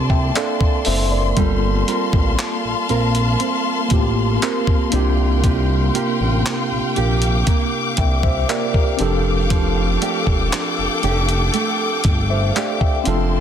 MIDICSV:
0, 0, Header, 1, 6, 480
1, 0, Start_track
1, 0, Tempo, 1016949
1, 646, Time_signature, 4, 2, 24, 8
1, 6326, End_track
2, 0, Start_track
2, 0, Title_t, "String section"
2, 0, Program_c, 0, 48
2, 0, Note_on_c, 0, 58, 88
2, 0, Note_on_c, 0, 74, 76
2, 0, Note_on_c, 0, 81, 77
2, 0, Note_on_c, 0, 84, 93
2, 628, Note_off_c, 0, 58, 0
2, 628, Note_off_c, 0, 74, 0
2, 634, Note_off_c, 0, 81, 0
2, 646, Note_on_c, 0, 81, 77
2, 647, Note_on_c, 0, 58, 84
2, 647, Note_on_c, 0, 77, 78
2, 2309, Note_off_c, 0, 81, 0
2, 2310, Note_off_c, 0, 77, 0
2, 2324, Note_on_c, 0, 77, 77
2, 2325, Note_on_c, 0, 79, 74
2, 3268, Note_off_c, 0, 84, 0
2, 3286, Note_on_c, 0, 86, 94
2, 4227, Note_off_c, 0, 79, 0
2, 4228, Note_off_c, 0, 58, 0
2, 4236, Note_off_c, 0, 86, 0
2, 4246, Note_on_c, 0, 69, 86
2, 4247, Note_on_c, 0, 79, 77
2, 4247, Note_on_c, 0, 86, 97
2, 6146, Note_off_c, 0, 77, 0
2, 6147, Note_off_c, 0, 69, 0
2, 6147, Note_off_c, 0, 79, 0
2, 6148, Note_off_c, 0, 86, 0
2, 6166, Note_on_c, 0, 58, 84
2, 6166, Note_on_c, 0, 74, 75
2, 6166, Note_on_c, 0, 81, 78
2, 6166, Note_on_c, 0, 84, 96
2, 6326, Note_off_c, 0, 58, 0
2, 6326, Note_off_c, 0, 74, 0
2, 6326, Note_off_c, 0, 81, 0
2, 6326, Note_off_c, 0, 84, 0
2, 6326, End_track
3, 0, Start_track
3, 0, Title_t, "Tine electric piano"
3, 0, Program_c, 1, 4
3, 0, Control_c, 1, 64, 127
3, 46, Note_on_c, 1, 79, 65
3, 49, Note_on_c, 1, 76, 55
3, 160, Note_off_c, 1, 79, 0
3, 162, Note_off_c, 1, 76, 0
3, 166, Note_on_c, 1, 77, 71
3, 169, Note_on_c, 1, 74, 63
3, 394, Note_off_c, 1, 77, 0
3, 395, Note_off_c, 1, 74, 0
3, 406, Note_on_c, 1, 76, 75
3, 409, Note_on_c, 1, 72, 60
3, 520, Note_off_c, 1, 76, 0
3, 522, Note_off_c, 1, 72, 0
3, 526, Note_on_c, 1, 74, 62
3, 529, Note_on_c, 1, 70, 56
3, 635, Note_on_c, 1, 58, 77
3, 642, Note_on_c, 1, 60, 73
3, 649, Note_on_c, 1, 65, 78
3, 652, Control_c, 1, 64, 0
3, 657, Note_on_c, 1, 69, 90
3, 741, Control_c, 1, 64, 127
3, 754, Note_off_c, 1, 74, 0
3, 755, Note_off_c, 1, 70, 0
3, 1356, Note_off_c, 1, 58, 0
3, 1360, Note_off_c, 1, 60, 0
3, 1363, Note_off_c, 1, 65, 0
3, 1367, Note_off_c, 1, 69, 0
3, 1834, Note_on_c, 1, 58, 89
3, 1842, Note_on_c, 1, 60, 78
3, 1849, Note_on_c, 1, 65, 78
3, 1857, Note_on_c, 1, 67, 98
3, 2309, Note_off_c, 1, 58, 0
3, 2315, Note_on_c, 1, 58, 91
3, 2322, Note_on_c, 1, 62, 83
3, 2324, Note_off_c, 1, 60, 0
3, 2324, Note_off_c, 1, 65, 0
3, 2330, Note_on_c, 1, 65, 85
3, 2331, Note_off_c, 1, 67, 0
3, 2332, Control_c, 1, 64, 0
3, 2338, Note_on_c, 1, 67, 103
3, 2430, Control_c, 1, 64, 127
3, 3088, Note_off_c, 1, 58, 0
3, 3092, Note_off_c, 1, 62, 0
3, 3096, Note_off_c, 1, 65, 0
3, 3100, Note_off_c, 1, 67, 0
3, 3766, Note_on_c, 1, 79, 67
3, 3769, Note_on_c, 1, 76, 59
3, 3880, Note_off_c, 1, 79, 0
3, 3882, Note_off_c, 1, 76, 0
3, 3887, Note_on_c, 1, 76, 72
3, 3889, Note_on_c, 1, 72, 63
3, 4000, Note_off_c, 1, 76, 0
3, 4002, Note_off_c, 1, 72, 0
3, 4007, Note_on_c, 1, 74, 77
3, 4009, Note_on_c, 1, 70, 62
3, 4120, Note_off_c, 1, 74, 0
3, 4122, Note_off_c, 1, 70, 0
3, 4127, Note_on_c, 1, 70, 67
3, 4129, Note_on_c, 1, 67, 53
3, 4235, Note_on_c, 1, 60, 91
3, 4242, Note_on_c, 1, 62, 84
3, 4244, Note_off_c, 1, 67, 0
3, 4250, Note_on_c, 1, 67, 92
3, 4252, Control_c, 1, 64, 0
3, 4258, Note_on_c, 1, 69, 106
3, 4346, Control_c, 1, 64, 127
3, 4354, Note_off_c, 1, 70, 0
3, 5008, Note_off_c, 1, 60, 0
3, 5012, Note_off_c, 1, 62, 0
3, 5016, Note_off_c, 1, 67, 0
3, 5020, Note_off_c, 1, 69, 0
3, 5805, Note_on_c, 1, 76, 70
3, 5808, Note_on_c, 1, 72, 62
3, 5920, Note_off_c, 1, 76, 0
3, 5921, Note_off_c, 1, 72, 0
3, 5926, Note_on_c, 1, 77, 76
3, 5928, Note_on_c, 1, 74, 62
3, 6040, Note_off_c, 1, 77, 0
3, 6041, Note_off_c, 1, 74, 0
3, 6045, Note_on_c, 1, 79, 69
3, 6048, Note_on_c, 1, 76, 59
3, 6153, Note_on_c, 1, 60, 95
3, 6161, Note_on_c, 1, 62, 87
3, 6169, Note_on_c, 1, 65, 86
3, 6172, Control_c, 1, 64, 0
3, 6176, Note_on_c, 1, 69, 106
3, 6244, Control_c, 1, 64, 127
3, 6273, Note_off_c, 1, 79, 0
3, 6275, Note_off_c, 1, 76, 0
3, 6326, Note_off_c, 1, 60, 0
3, 6326, Note_off_c, 1, 62, 0
3, 6326, Note_off_c, 1, 65, 0
3, 6326, Note_off_c, 1, 69, 0
3, 6326, End_track
4, 0, Start_track
4, 0, Title_t, "Nylon-string guitar"
4, 0, Program_c, 2, 24
4, 0, Note_on_c, 2, 53, 86
4, 0, Note_on_c, 2, 60, 70
4, 0, Note_on_c, 2, 62, 64
4, 0, Note_on_c, 2, 69, 67
4, 164, Note_off_c, 2, 60, 0
4, 165, Note_on_c, 2, 60, 66
4, 167, Note_off_c, 2, 62, 0
4, 168, Note_on_c, 2, 62, 64
4, 170, Note_off_c, 2, 69, 0
4, 171, Note_on_c, 2, 69, 72
4, 404, Note_off_c, 2, 60, 0
4, 406, Note_on_c, 2, 60, 60
4, 644, Note_off_c, 2, 53, 0
4, 646, Note_on_c, 2, 55, 91
4, 883, Note_off_c, 2, 60, 0
4, 885, Note_on_c, 2, 60, 62
4, 886, Note_off_c, 2, 62, 0
4, 888, Note_on_c, 2, 65, 65
4, 889, Note_off_c, 2, 69, 0
4, 890, Note_on_c, 2, 70, 74
4, 1123, Note_off_c, 2, 65, 0
4, 1125, Note_on_c, 2, 65, 69
4, 1363, Note_off_c, 2, 60, 0
4, 1365, Note_off_c, 2, 65, 0
4, 1365, Note_on_c, 2, 60, 64
4, 1367, Note_on_c, 2, 65, 63
4, 1368, Note_off_c, 2, 70, 0
4, 1370, Note_on_c, 2, 70, 69
4, 1602, Note_off_c, 2, 60, 0
4, 1604, Note_on_c, 2, 60, 74
4, 2083, Note_off_c, 2, 60, 0
4, 2085, Note_on_c, 2, 60, 67
4, 2086, Note_off_c, 2, 65, 0
4, 2088, Note_on_c, 2, 65, 66
4, 2089, Note_off_c, 2, 70, 0
4, 2091, Note_on_c, 2, 70, 69
4, 2326, Note_on_c, 2, 48, 82
4, 2374, Note_off_c, 2, 55, 0
4, 2560, Note_off_c, 2, 48, 0
4, 2565, Note_on_c, 2, 48, 86
4, 2580, Note_off_c, 2, 70, 0
4, 2804, Note_off_c, 2, 60, 0
4, 2806, Note_on_c, 2, 58, 69
4, 2807, Note_off_c, 2, 65, 0
4, 2809, Note_on_c, 2, 65, 66
4, 2812, Note_on_c, 2, 67, 76
4, 3043, Note_off_c, 2, 65, 0
4, 3045, Note_on_c, 2, 65, 61
4, 3280, Note_off_c, 2, 58, 0
4, 3285, Note_on_c, 2, 58, 66
4, 3287, Note_off_c, 2, 65, 0
4, 3289, Note_off_c, 2, 67, 0
4, 3289, Note_on_c, 2, 65, 62
4, 3291, Note_on_c, 2, 67, 74
4, 3519, Note_off_c, 2, 58, 0
4, 3525, Note_on_c, 2, 58, 76
4, 3999, Note_off_c, 2, 58, 0
4, 4005, Note_on_c, 2, 58, 69
4, 4006, Note_off_c, 2, 65, 0
4, 4008, Note_on_c, 2, 65, 69
4, 4009, Note_off_c, 2, 67, 0
4, 4011, Note_on_c, 2, 67, 70
4, 4245, Note_on_c, 2, 53, 84
4, 4294, Note_off_c, 2, 48, 0
4, 4294, Note_off_c, 2, 58, 0
4, 4484, Note_off_c, 2, 53, 0
4, 4486, Note_on_c, 2, 53, 87
4, 4500, Note_off_c, 2, 67, 0
4, 4725, Note_on_c, 2, 57, 65
4, 4726, Note_off_c, 2, 65, 0
4, 4728, Note_on_c, 2, 62, 66
4, 4731, Note_on_c, 2, 67, 71
4, 4963, Note_off_c, 2, 62, 0
4, 4965, Note_on_c, 2, 62, 68
4, 5204, Note_off_c, 2, 57, 0
4, 5206, Note_off_c, 2, 67, 0
4, 5206, Note_on_c, 2, 57, 63
4, 5207, Note_off_c, 2, 62, 0
4, 5209, Note_on_c, 2, 62, 63
4, 5212, Note_on_c, 2, 67, 75
4, 5444, Note_off_c, 2, 57, 0
4, 5446, Note_on_c, 2, 57, 76
4, 5924, Note_off_c, 2, 57, 0
4, 5926, Note_off_c, 2, 67, 0
4, 5926, Note_on_c, 2, 57, 67
4, 5927, Note_off_c, 2, 62, 0
4, 5929, Note_on_c, 2, 62, 62
4, 5932, Note_on_c, 2, 67, 70
4, 6160, Note_off_c, 2, 53, 0
4, 6166, Note_on_c, 2, 53, 88
4, 6217, Note_off_c, 2, 67, 0
4, 6326, Note_off_c, 2, 53, 0
4, 6326, Note_off_c, 2, 57, 0
4, 6326, Note_off_c, 2, 62, 0
4, 6326, End_track
5, 0, Start_track
5, 0, Title_t, "Analog synth bass"
5, 0, Program_c, 3, 38
5, 0, Note_on_c, 3, 36, 91
5, 148, Note_off_c, 3, 36, 0
5, 410, Note_on_c, 3, 30, 81
5, 629, Note_off_c, 3, 30, 0
5, 647, Note_on_c, 3, 31, 113
5, 868, Note_off_c, 3, 31, 0
5, 1007, Note_on_c, 3, 33, 89
5, 1115, Note_off_c, 3, 33, 0
5, 1249, Note_on_c, 3, 34, 50
5, 1296, Note_off_c, 3, 34, 0
5, 1368, Note_on_c, 3, 34, 95
5, 1588, Note_off_c, 3, 34, 0
5, 1848, Note_on_c, 3, 33, 90
5, 2068, Note_off_c, 3, 33, 0
5, 2327, Note_on_c, 3, 36, 103
5, 2788, Note_off_c, 3, 36, 0
5, 2929, Note_on_c, 3, 33, 93
5, 3036, Note_off_c, 3, 33, 0
5, 3169, Note_on_c, 3, 34, 50
5, 3216, Note_off_c, 3, 34, 0
5, 3290, Note_on_c, 3, 34, 89
5, 3509, Note_off_c, 3, 34, 0
5, 3767, Note_on_c, 3, 36, 98
5, 3988, Note_off_c, 3, 36, 0
5, 4249, Note_on_c, 3, 29, 94
5, 4708, Note_off_c, 3, 29, 0
5, 4847, Note_on_c, 3, 28, 82
5, 4955, Note_off_c, 3, 28, 0
5, 5090, Note_on_c, 3, 29, 48
5, 5137, Note_off_c, 3, 29, 0
5, 5209, Note_on_c, 3, 29, 93
5, 5429, Note_off_c, 3, 29, 0
5, 5687, Note_on_c, 3, 31, 92
5, 5908, Note_off_c, 3, 31, 0
5, 6169, Note_on_c, 3, 29, 107
5, 6326, Note_off_c, 3, 29, 0
5, 6326, End_track
6, 0, Start_track
6, 0, Title_t, "Drums"
6, 46, Note_on_c, 9, 36, 93
6, 93, Note_off_c, 9, 36, 0
6, 168, Note_on_c, 9, 42, 75
6, 171, Note_on_c, 9, 39, 123
6, 215, Note_off_c, 9, 42, 0
6, 218, Note_off_c, 9, 39, 0
6, 286, Note_on_c, 9, 36, 95
6, 333, Note_off_c, 9, 36, 0
6, 401, Note_on_c, 9, 46, 74
6, 448, Note_off_c, 9, 46, 0
6, 645, Note_on_c, 9, 42, 72
6, 646, Note_on_c, 9, 36, 116
6, 692, Note_off_c, 9, 42, 0
6, 693, Note_off_c, 9, 36, 0
6, 887, Note_on_c, 9, 42, 70
6, 935, Note_off_c, 9, 42, 0
6, 1006, Note_on_c, 9, 36, 94
6, 1053, Note_off_c, 9, 36, 0
6, 1128, Note_on_c, 9, 39, 118
6, 1128, Note_on_c, 9, 42, 72
6, 1175, Note_off_c, 9, 39, 0
6, 1175, Note_off_c, 9, 42, 0
6, 1366, Note_on_c, 9, 42, 41
6, 1413, Note_off_c, 9, 42, 0
6, 1486, Note_on_c, 9, 42, 69
6, 1533, Note_off_c, 9, 42, 0
6, 1604, Note_on_c, 9, 42, 70
6, 1652, Note_off_c, 9, 42, 0
6, 1841, Note_on_c, 9, 42, 74
6, 1846, Note_on_c, 9, 36, 90
6, 1888, Note_off_c, 9, 42, 0
6, 1893, Note_off_c, 9, 36, 0
6, 2087, Note_on_c, 9, 42, 72
6, 2091, Note_on_c, 9, 39, 117
6, 2135, Note_off_c, 9, 42, 0
6, 2138, Note_off_c, 9, 39, 0
6, 2206, Note_on_c, 9, 36, 91
6, 2253, Note_off_c, 9, 36, 0
6, 2322, Note_on_c, 9, 42, 72
6, 2369, Note_off_c, 9, 42, 0
6, 2566, Note_on_c, 9, 36, 107
6, 2566, Note_on_c, 9, 42, 69
6, 2613, Note_off_c, 9, 36, 0
6, 2613, Note_off_c, 9, 42, 0
6, 2808, Note_on_c, 9, 42, 72
6, 2856, Note_off_c, 9, 42, 0
6, 3049, Note_on_c, 9, 39, 116
6, 3049, Note_on_c, 9, 42, 66
6, 3096, Note_off_c, 9, 42, 0
6, 3097, Note_off_c, 9, 39, 0
6, 3286, Note_on_c, 9, 42, 41
6, 3334, Note_off_c, 9, 42, 0
6, 3406, Note_on_c, 9, 42, 71
6, 3454, Note_off_c, 9, 42, 0
6, 3525, Note_on_c, 9, 42, 74
6, 3526, Note_on_c, 9, 36, 103
6, 3572, Note_off_c, 9, 42, 0
6, 3573, Note_off_c, 9, 36, 0
6, 3762, Note_on_c, 9, 42, 75
6, 3766, Note_on_c, 9, 36, 87
6, 3809, Note_off_c, 9, 42, 0
6, 3813, Note_off_c, 9, 36, 0
6, 3886, Note_on_c, 9, 36, 100
6, 3933, Note_off_c, 9, 36, 0
6, 4008, Note_on_c, 9, 42, 75
6, 4011, Note_on_c, 9, 39, 120
6, 4055, Note_off_c, 9, 42, 0
6, 4059, Note_off_c, 9, 39, 0
6, 4126, Note_on_c, 9, 36, 90
6, 4173, Note_off_c, 9, 36, 0
6, 4241, Note_on_c, 9, 42, 71
6, 4289, Note_off_c, 9, 42, 0
6, 4486, Note_on_c, 9, 36, 119
6, 4486, Note_on_c, 9, 42, 72
6, 4533, Note_off_c, 9, 36, 0
6, 4533, Note_off_c, 9, 42, 0
6, 4729, Note_on_c, 9, 42, 73
6, 4776, Note_off_c, 9, 42, 0
6, 4846, Note_on_c, 9, 36, 95
6, 4893, Note_off_c, 9, 36, 0
6, 4969, Note_on_c, 9, 39, 121
6, 4969, Note_on_c, 9, 42, 71
6, 5016, Note_off_c, 9, 42, 0
6, 5017, Note_off_c, 9, 39, 0
6, 5207, Note_on_c, 9, 42, 43
6, 5254, Note_off_c, 9, 42, 0
6, 5327, Note_on_c, 9, 42, 66
6, 5374, Note_off_c, 9, 42, 0
6, 5445, Note_on_c, 9, 42, 71
6, 5493, Note_off_c, 9, 42, 0
6, 5682, Note_on_c, 9, 42, 73
6, 5686, Note_on_c, 9, 36, 90
6, 5729, Note_off_c, 9, 42, 0
6, 5733, Note_off_c, 9, 36, 0
6, 5928, Note_on_c, 9, 42, 72
6, 5931, Note_on_c, 9, 39, 117
6, 5975, Note_off_c, 9, 42, 0
6, 5978, Note_off_c, 9, 39, 0
6, 6046, Note_on_c, 9, 36, 91
6, 6093, Note_off_c, 9, 36, 0
6, 6162, Note_on_c, 9, 42, 68
6, 6209, Note_off_c, 9, 42, 0
6, 6326, End_track
0, 0, End_of_file